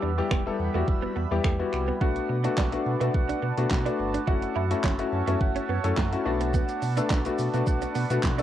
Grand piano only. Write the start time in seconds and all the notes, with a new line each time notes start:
0.18 G3 B3 E4 G4
0.46 G3 B3 E4 A4
0.75 G3 B3 E4 F#4
1.31 G3 B3 E4 G4
1.59 G3 B3 E4 F#4
2.01 A3 B3 D4 F#4
2.44 A3 B3 D4 F#4
2.72 A3 B3 D4 F#4
3.01 A3 B3 D4 F#4
3.57 A3 B3 D4 F#4
3.86 A3 B3 D4 F#4
4.27 A3 C#4 E4 F#4
4.71 A3 C#4 E4 F#4
4.99 A3 C#4 E4 F#4
5.27 A3 C#4 E4 F#4
5.84 A3 C#4 E4 A4
6.12 A3 C#4 E4 F#4
6.25 A3 B3 D4 F#4
6.97 A3 B3 D4 A4
7.25 A3 B3 D4 F#4
7.54 A3 B3 D4 F#4
8.10 A3 B3 D4 F#4
8.39 A3 B3 D4 A4